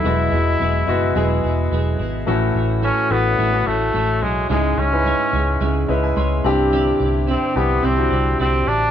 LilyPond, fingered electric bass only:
\new Staff \with { instrumentName = "Fingered electric bass" } { \clef bass \time 4/4 \key a \lydian \tempo 4 = 108 e,,8 e,,8 e,,8 fis,,8 e,,8 e,,8 e,,8 gis,,8 | a,,8 a,,8. r16 a,,8 a,,8 a,,8 a,,8 b,,8 | cis,8 cis,8. r16 cis,8 cis,8 cis,8 cis,8 c,8~ | c,8 c,8. r16 c,8 c,8 c,8 c,8 a,,8 | }